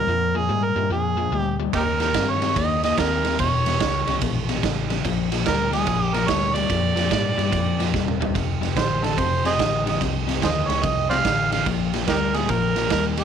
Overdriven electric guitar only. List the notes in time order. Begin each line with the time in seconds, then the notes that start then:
0.08 A#2 F3
0.35 A#2 F3
0.49 A#2 G3
0.76 A#2 G3
0.90 A#2 F3
1.17 A#2 F3
1.32 A#2 G3
1.59 A#2 G3
1.73 D#3 A#3
2.00 D#3 A#3
2.15 D#3 C4
2.42 D#3 C4
2.56 D#3 A#3
2.84 D#3 A#3
2.98 D#3 C4
3.24 D#3 C4
3.40 E2 B2
3.66 E2 B2
3.81 E2 C#3
4.08 E2 C#3
4.22 E2 B2
4.49 E2 B2
4.63 E2 C#3
4.90 E2 C#3
5.05 A#2 F3
5.32 A#2 F3
5.46 A#2 G3
5.72 A#2 G3
5.87 A#2 F3
6.14 A#2 F3
6.28 A#2 G3
6.55 A#2 G3
6.69 A#2 F3
6.96 A#2 F3
7.10 A#2 G3
7.37 A#2 G3
7.51 A#2 F3
7.79 A#2 F3
7.94 A#2 G3
8.20 A#2 G3
8.35 F2 C3
8.61 F2 C3
8.76 F2 D3
9.03 F2 D3
9.17 F2 C3
9.45 F2 C3
9.59 F2 D3
9.86 F2 D3
10.01 F2 C3
10.27 F2 C3
10.42 F2 D3
10.69 F2 D3
10.83 F2 C3
11.11 F2 C3
11.25 F2 D3
11.52 F2 D3
11.66 A#2 F3
11.94 A#2 F3
12.08 A#2 G3
12.35 A#2 G3
12.49 A#2 F3
12.76 A#2 F3
12.90 A#2 G3
13.18 A#2 G3